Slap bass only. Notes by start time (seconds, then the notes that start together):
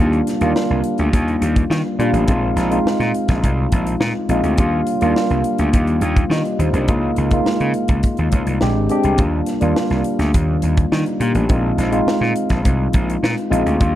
0.00 D#2
0.41 D#2
0.70 C2
0.99 D2
1.13 D#2
1.41 D#2
1.70 D#3
1.99 A#2
2.13 A1
2.28 A#1
2.56 A#1
2.85 muted slap bass stroke
3.00 A#2
3.29 A#1
3.44 C2
3.72 A#1
4.00 A#2
4.29 A#1
4.43 D2
4.58 D#2
5.02 D#2
5.30 C2
5.59 D2
5.74 D#2
6.01 D#2
6.30 D#3
6.59 D#2
6.73 C2
6.88 C#2
7.18 C#2
7.46 muted slap bass stroke
7.60 C#3
7.89 C#2
8.18 D#2
8.33 C#2
8.46 C2
8.62 A#1
8.76 G#1
9.04 C2
9.18 D#2
9.62 D#2
9.90 C2
10.19 D2
10.34 D#2
10.63 D#2
10.92 D#3
11.20 A#2
11.34 A1
11.49 A#1
11.78 A#1
12.06 muted slap bass stroke
12.21 A#2
12.50 A#1
12.65 C2
12.94 A#1
13.23 A#2
13.51 A#1
13.66 D2
13.80 D#2